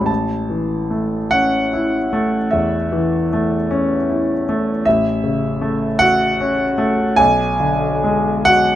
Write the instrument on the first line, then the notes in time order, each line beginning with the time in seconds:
grand piano
Already playing: E3 G#3 C#4 E4 B5
0.01 A1
0.06 A5
0.50 E3
0.90 A3
1.31 C#4 F#5
1.73 E4
2.13 A3
2.51 E2 E5
2.92 E3
3.33 A3
3.71 C#4
4.10 E4
4.49 A3
4.85 A1 E5
5.24 C#3
5.61 A3
5.99 F#4 F#5
6.41 C#4
6.78 A3
7.16 B1 G#5
7.60 D3
8.04 G#3
8.45 F#4 F#5